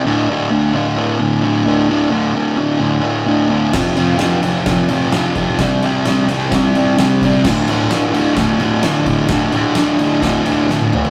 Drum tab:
CC |----------------|----------------|x---------------|----------------|
RD |----------------|----------------|--x-x-x-x-x-x-x-|x-x-x-x-x-x-x-x-|
SD |----------------|----------------|o---o---o---o---|o---o---o---o---|
T1 |----------------|----------------|----------------|----------------|
T2 |----------------|----------------|----------------|----------------|
FT |----------------|----------------|----------------|----------------|
BD |----------------|----------------|o-------o-----o-|o-------o-----o-|

CC |x---------------|----------------|
RD |--x-x-x-x-x-x-x-|x-x-x-x-x-x-----|
SD |o---o---o---o---|o---o---o---o---|
T1 |----------------|-------------o--|
T2 |----------------|--------------o-|
FT |----------------|---------------o|
BD |o-------o-----o-|o-------o-------|